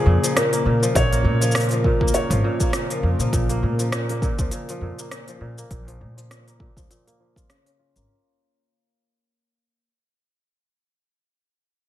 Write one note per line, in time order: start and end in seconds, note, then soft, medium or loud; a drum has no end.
0.00 8.04 C#3 medium
0.00 0.22 F3 medium
0.00 0.52 A#3 medium
0.00 8.04 A#3 medium
0.00 8.04 F4 medium
0.00 0.38 G#4 medium
0.00 8.04 A#4 loud
0.06 0.16 F2 medium
0.06 0.35 A#2 medium
0.24 0.81 F3 medium
0.24 open hi-hat soft
0.24 cabasa medium
0.36 0.65 A#2 medium
0.36 0.79 A#4 medium
0.36 cross-stick medium
0.36 open hi-hat medium
0.36 cabasa soft
0.53 1.12 A#3 medium
0.53 open hi-hat soft
0.53 cabasa soft
0.65 0.85 A#2 medium
0.65 0.94 A#2 medium
0.82 1.40 F3 medium
0.82 cabasa medium
0.95 1.26 A#1 medium
0.95 1.24 A#2 medium
0.95 1.57 C#5 loud
0.95 kick loud
0.95 open hi-hat medium
0.95 cabasa medium
1.12 2.01 A#3 medium
1.12 open hi-hat soft
1.12 cabasa soft
1.24 1.90 A#2 medium
1.24 1.54 A#2 medium
1.41 1.71 F3 medium
1.41 open hi-hat soft
1.41 cabasa medium
1.51 1.84 A#2 medium
1.51 2.16 A#4 medium
1.51 cross-stick loud
1.51 open hi-hat medium
1.51 cabasa soft
1.55 open hi-hat soft
1.55 cabasa medium
1.60 open hi-hat soft
1.60 cabasa soft
1.63 open hi-hat soft
1.69 open hi-hat soft
1.71 2.30 F3 medium
1.71 open hi-hat soft
1.71 cabasa soft
1.84 2.14 A#2 medium
1.84 kick loud
2.01 2.09 C#2 medium
2.01 2.61 A#3 medium
2.01 kick medium
2.08 cabasa medium
2.14 2.43 A#2 medium
2.14 2.70 C#5 medium
2.14 open hi-hat medium
2.14 cabasa medium
2.30 2.38 G#1 loud
2.30 2.89 F3 medium
2.30 open hi-hat soft
2.30 cabasa soft
2.44 2.73 A#2 medium
2.60 3.49 A#3 medium
2.60 kick medium
2.60 cabasa medium
2.73 3.03 A#2 medium
2.73 cross-stick medium
2.73 open hi-hat medium
2.73 cabasa soft
2.90 3.19 F3 medium
2.90 open hi-hat soft
2.90 cabasa soft
3.03 3.13 F2 medium
3.03 3.32 A#2 medium
3.19 3.27 A#2 medium
3.19 3.78 F3 medium
3.19 cabasa medium
3.33 3.64 A#1 medium
3.33 3.62 A#2 medium
3.33 kick loud
3.33 open hi-hat medium
3.33 cabasa medium
3.49 4.10 A#3 medium
3.49 open hi-hat soft
3.49 cabasa soft
3.63 4.28 A#2 medium
3.63 3.92 A#2 medium
3.79 4.39 F3 medium
3.79 open hi-hat soft
3.79 cabasa medium
3.92 4.22 A#2 medium
3.92 cross-stick loud
3.92 open hi-hat medium
3.92 cabasa medium
4.09 4.99 A#3 medium
4.09 open hi-hat soft
4.22 4.52 A#2 medium
4.22 kick loud
4.22 cabasa soft
4.39 4.47 C#2 medium
4.39 4.69 F3 medium
4.39 kick loud
4.39 cabasa medium
4.51 4.81 A#2 medium
4.51 open hi-hat medium
4.51 cabasa medium
4.69 5.27 F3 medium
4.69 open hi-hat soft
4.69 cabasa soft
4.81 4.91 F2 medium
4.81 5.10 A#2 medium
4.99 5.58 A#3 medium
4.99 open hi-hat soft
4.99 cabasa medium
5.11 5.40 A#2 medium
5.11 cross-stick medium
5.11 open hi-hat medium
5.11 cabasa soft
5.28 5.86 F3 medium
5.28 open hi-hat soft
5.28 cabasa soft
5.41 5.60 A#2 medium
5.41 5.70 A#2 medium
5.58 6.47 A#3 medium
5.58 cabasa medium
5.71 6.02 A#1 medium
5.71 6.00 A#2 medium
5.71 kick loud
5.71 open hi-hat medium
5.71 cabasa soft
5.88 6.16 F3 medium
5.88 open hi-hat soft
6.01 6.29 A#2 medium
6.01 6.66 A#2 medium
6.17 6.76 F3 medium
6.17 open hi-hat soft
6.17 cabasa medium
6.30 6.59 A#2 medium
6.30 cross-stick medium
6.30 open hi-hat medium
6.30 cabasa soft
6.47 7.07 A#3 medium
6.47 open hi-hat soft
6.47 cabasa soft
6.60 6.89 A#2 medium
6.60 kick loud
6.77 6.84 C#2 medium
6.77 7.19 F3 medium
6.77 kick medium
6.77 open hi-hat soft
6.77 cabasa medium
6.91 7.54 A#2 medium
6.91 open hi-hat medium
6.91 cabasa soft
7.07 7.96 A#3 medium
7.07 open hi-hat soft
7.07 cabasa soft
7.20 7.54 F3 medium
7.36 7.79 F4 medium
7.36 kick medium
7.36 open hi-hat soft
7.36 cabasa medium
7.50 8.13 C#3 medium
7.50 cross-stick medium
7.50 open hi-hat medium
7.50 cabasa soft
7.66 9.40 C#4 medium
7.66 open hi-hat soft
7.66 cabasa soft
7.79 9.30 F4 medium
7.96 8.03 G#1 medium
7.96 9.89 A#3 medium
7.96 open hi-hat soft
7.96 cabasa medium